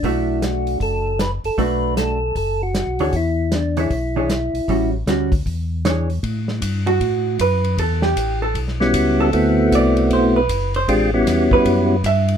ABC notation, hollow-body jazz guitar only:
X:1
M:4/4
L:1/8
Q:"Swing" 1/4=155
K:Amix
V:1 name="Hollow-body jazz guitar"
[A,DF]4- [A,DF] z3 | [A,DF]3 z4 [E,D^Gc] | z3 [E,D^Gc] z [E,DGc] z2 | [G,CF] z [G,CF] z3 [E,D^Gc] z |
z3 F3 B2 | A G2 A z3 A- | A2 d2 =c B2 c | z3 B3 e2 |]